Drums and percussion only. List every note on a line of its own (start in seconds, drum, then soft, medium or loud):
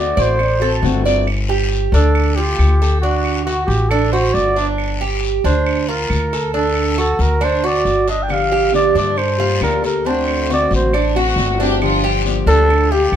0.18 short guiro medium
0.39 long guiro medium
0.39 claves medium
0.85 short guiro medium
1.07 short guiro medium
1.27 long guiro medium
1.27 claves medium
1.72 short guiro medium
1.94 short guiro medium
2.15 long guiro medium
2.15 claves medium
2.59 short guiro medium
2.59 claves medium
2.82 short guiro medium
3.03 long guiro medium
3.25 claves medium
3.48 short guiro medium
3.70 short guiro medium
3.91 long guiro medium
3.91 claves medium
4.35 short guiro medium
4.57 short guiro medium
4.78 long guiro medium
4.78 claves medium
5.23 short guiro medium
5.45 short guiro medium
5.66 long guiro medium
5.66 claves medium
6.10 short guiro medium
6.10 claves medium
6.33 short guiro medium
6.55 long guiro medium
6.75 claves medium
6.98 short guiro medium
7.20 short guiro medium
7.42 long guiro medium
7.42 claves medium
7.86 short guiro medium
8.08 short guiro medium
8.30 long guiro medium
8.30 claves medium
8.74 short guiro medium
8.97 short guiro medium
9.18 long guiro medium
9.18 claves medium
9.62 short guiro medium
9.62 claves medium
9.85 short guiro medium
10.06 long guiro medium
10.28 claves medium
10.51 short guiro medium
10.72 short guiro medium
10.93 long guiro medium
10.93 claves medium
11.38 short guiro medium
11.61 short guiro medium
11.82 long guiro medium
11.82 claves medium
12.26 short guiro medium
12.48 short guiro medium
12.70 long guiro medium
12.70 claves medium
13.13 claves medium